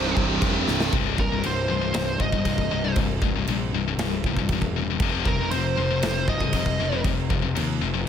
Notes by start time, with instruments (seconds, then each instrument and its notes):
Already playing: picked electric bass C1, distorted electric guitar C2 G2 C3, lead electric guitar G4 C5
0.16 picked electric bass C1, kick
0.42 picked electric bass F1, kick, china
0.68 picked electric bass C1, snare
0.80 snare
0.92 picked electric bass C1, distorted electric guitar C2 G2 C3, kick, crash
1.18 picked electric bass C1, distorted electric guitar C2 G2, lead electric guitar A#4, kick
1.32 distorted electric guitar C2 G2
1.44 picked electric bass C1, distorted electric guitar C2 G2, lead electric guitar C5, crash
1.68 picked electric bass C1, distorted electric guitar C2 G2
1.81 distorted electric guitar C2 G2
1.93 picked electric bass C1, distorted electric guitar C2 G2, snare, crash
2.19 picked electric bass G1, distorted electric guitar C2 G2, lead electric guitar D#5, kick
2.32 distorted electric guitar C2 G2, kick
2.45 picked electric bass C1, distorted electric guitar C2 G2, kick, crash
2.58 kick
2.71 picked electric bass C1, distorted electric guitar C2 G2
2.84 distorted electric guitar C2 G2
2.96 picked electric bass C1, distorted electric guitar C2 G2, kick, crash
3.22 picked electric bass C1, distorted electric guitar C2 G2, kick
3.36 distorted electric guitar C2 G2
3.47 picked electric bass A#1, distorted electric guitar C2 G2, crash
3.73 picked electric bass C1, distorted electric guitar C2 G2
3.88 distorted electric guitar C2 G2
3.98 picked electric bass C1, distorted electric guitar C2 G2, snare, crash
4.23 picked electric bass C1, distorted electric guitar C2 G2, kick
4.37 distorted electric guitar C2 G2, kick
4.49 picked electric bass E1, distorted electric guitar C2, kick, crash
4.53 distorted electric guitar G2
4.62 kick
4.76 distorted electric guitar C2 G2
4.90 distorted electric guitar C2 G2
5.00 picked electric bass F1, distorted electric guitar F2 C3 F3, kick, crash
5.25 picked electric bass F1, distorted electric guitar F2 C3, lead electric guitar A#4, kick
5.41 distorted electric guitar F2 C3
5.51 picked electric bass F1, distorted electric guitar F2 C3, lead electric guitar C5, crash
5.78 picked electric bass F1, distorted electric guitar F2 C3
5.90 distorted electric guitar F2 C3
6.02 picked electric bass F1, distorted electric guitar F2 C3, snare, crash
6.27 picked electric bass C1, distorted electric guitar F2 C3, lead electric guitar D#5, kick
6.41 distorted electric guitar F2 C3, kick
6.52 picked electric bass F1, distorted electric guitar F2 C3, kick, crash
6.66 kick
6.80 picked electric bass F1, distorted electric guitar F2 C3
6.92 distorted electric guitar F2 C3
7.04 picked electric bass F1, distorted electric guitar F2 C3, kick, crash
7.30 picked electric bass F1, distorted electric guitar F2 C3, kick
7.42 distorted electric guitar F2 C3
7.55 picked electric bass D#2, distorted electric guitar F2 C3, crash
7.81 picked electric bass F1, distorted electric guitar F2 C3
7.94 distorted electric guitar F2 C3